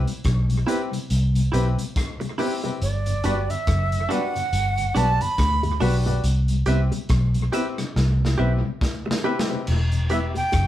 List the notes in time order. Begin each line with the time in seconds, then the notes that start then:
0.05 C3 G3, closed hi-hat
0.24 B1, kick, cross-stick, closed hi-hat
0.49 C3 G3, closed hi-hat
0.66 B3 C4 E4 G4 B4, closed hi-hat
0.91 C3 G3, closed hi-hat
1.10 C2, closed hi-hat
1.34 C3 G3, closed hi-hat
1.52 B1 B3 C4 E4 G4 B4, closed hi-hat, high bongo
1.78 C3 G3, closed hi-hat
1.96 kick, cross-stick, closed hi-hat
2.20 C3 G3, muted clean electric guitar stroke, closed hi-hat, high bongo
2.38 B3 C4 E4 G4 B4, open hi-hat, high bongo, low bongo
2.63 C3 G3 C4 E4 G4 B4, closed hi-hat, high bongo
2.82 G1 D5, closed hi-hat
3.06 G2 D3, closed hi-hat
3.24 G1 G3 B3 D4 F#4 G4 B4, closed hi-hat
3.50 G2 D3 E5, closed hi-hat
3.67 F#1, kick, cross-stick, closed hi-hat
3.92 G2 D3, closed hi-hat
4.09 G3 B3 D4 F#4 G4 B4 F#5, cross-stick, closed hi-hat
4.35 G2 D3, closed hi-hat
4.53 G1, closed hi-hat
4.77 G2 D3, closed hi-hat
4.95 B1 G3 B3 D4 F#4 G4 B4 A5, closed hi-hat, high bongo
5.21 G2 D3 B5, closed hi-hat
5.38 D2, kick, cross-stick, closed hi-hat
5.63 G2 D3, closed hi-hat, high bongo
5.80 B1 G3 B3 D4 F#4 G4 B4, open hi-hat, high bongo, low bongo
6.06 G2 D3 D4 F#4 G4 B4, closed hi-hat, high bongo
6.24 C2, closed hi-hat
6.48 C3 G3, closed hi-hat
6.66 C2 B3 C4 E4 G4 B4 E5, closed hi-hat
6.92 C3 G3, closed hi-hat, high bongo
7.09 B1, kick, cross-stick, closed hi-hat, high bongo
7.34 C3 G3, closed hi-hat
7.52 B3 C4 E4 G4 B4 E5, closed hi-hat
7.78 C3 G3, cross-stick, closed hi-hat
7.96 C2, snare
8.20 C3 G3
8.25 snare
8.38 B1 B3 C4 E4 G4 B4 E5, high bongo
8.64 C3 G3
8.81 kick, snare
9.06 C3 G3, muted clean electric guitar stroke, high bongo
9.11 snare
9.23 B3 C4 E4 G4 B4 E5, high bongo, low bongo
9.39 snare
9.49 C3 G3 C4 E4 G4 B4, high bongo
9.67 E1, crash
9.91 E2 B2, closed hi-hat
10.09 G3 B3 E4 G4 B4 E5, closed hi-hat
10.35 E2 B2 G5, closed hi-hat, high bongo
10.52 F#1, kick, cross-stick, closed hi-hat, high bongo